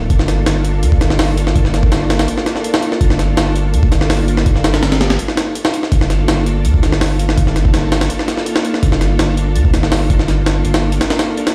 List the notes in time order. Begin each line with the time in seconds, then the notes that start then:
0.10 G1 A#3 D4 F4 A4, kick, closed hi-hat
0.19 snare
0.28 snare, closed hi-hat
0.46 G1, snare, closed hi-hat
0.65 closed hi-hat
0.83 D2, closed hi-hat
0.92 kick
1.01 G1 A#3 D4 F4 A4, snare, closed hi-hat
1.10 snare
1.19 snare, open hi-hat
1.37 A#3 D4 F4 A4, closed hi-hat
1.47 snare
1.55 G1 A#3 D4 F4 A4, kick, closed hi-hat
1.65 snare
1.74 snare, closed hi-hat
1.83 kick
1.92 G1, snare, closed hi-hat
2.10 snare, closed hi-hat
2.19 snare, closed hi-hat
2.28 closed hi-hat
2.38 snare
2.46 A#3 D4 F4 A4, snare, closed hi-hat
2.56 snare
2.64 closed hi-hat
2.74 snare
2.83 A#3 D4 F4 A4, closed hi-hat
2.92 snare
3.01 G1 A#3 D4 F4 A4, kick, closed hi-hat
3.10 snare
3.19 snare, closed hi-hat
3.37 G1, snare, closed hi-hat
3.56 closed hi-hat
3.74 D2, closed hi-hat
3.83 kick
3.92 G1 A#3 D4 F4 A4, snare, closed hi-hat
4.01 snare
4.10 snare, open hi-hat
4.28 A#3 D4 F4 A4, closed hi-hat
4.37 snare
4.46 G1 A#3 D4 F4 A4, kick, closed hi-hat
4.56 snare
4.64 snare, closed hi-hat
4.74 snare, closed hi-hat
4.83 G1, snare, closed hi-hat
4.92 snare, closed hi-hat
5.01 snare, closed hi-hat
5.10 snare, closed hi-hat
5.19 closed hi-hat
5.28 snare
5.37 snare, closed hi-hat
5.55 closed hi-hat
5.65 snare
5.74 A#3 D4 F4 A4, closed hi-hat
5.83 snare
5.92 G1 A#3 D4 F4 A4, kick, closed hi-hat
6.01 snare
6.10 snare, closed hi-hat
6.28 G1, snare, closed hi-hat
6.46 closed hi-hat
6.65 D2, closed hi-hat
6.74 kick
6.83 G1 A#3 D4 F4 A4, snare, closed hi-hat
6.92 snare
7.01 snare, open hi-hat
7.19 A#3 D4 F4 A4, closed hi-hat
7.29 snare
7.37 G1 A#3 D4 F4 A4, kick, closed hi-hat
7.47 snare
7.56 snare, closed hi-hat
7.65 kick
7.74 G1, snare, closed hi-hat
7.92 snare, closed hi-hat
8.01 snare, closed hi-hat
8.10 closed hi-hat
8.19 snare
8.28 A#3 D4 F4 A4, snare, closed hi-hat
8.38 snare
8.46 closed hi-hat
8.56 snare
8.65 A#3 D4 F4 A4, closed hi-hat
8.74 snare
8.83 G1 A#3 D4 F4 A4, kick, closed hi-hat
8.92 snare
9.01 snare, closed hi-hat
9.19 G1, snare, closed hi-hat
9.37 closed hi-hat
9.55 D2, closed hi-hat
9.65 kick
9.74 G1 A#3 D4 F4 A4, snare, closed hi-hat
9.83 snare
9.92 snare, open hi-hat
10.10 A#3 D4 F4 A4, kick, closed hi-hat
10.19 snare
10.28 G1 A#3 D4 F4 A4, snare, closed hi-hat
10.46 snare, closed hi-hat
10.65 G1, closed hi-hat
10.74 snare, closed hi-hat
10.92 closed hi-hat
11.01 snare, closed hi-hat
11.10 snare, closed hi-hat
11.19 A#3 D4 F4 A4, snare, closed hi-hat
11.37 closed hi-hat
11.47 snare, closed hi-hat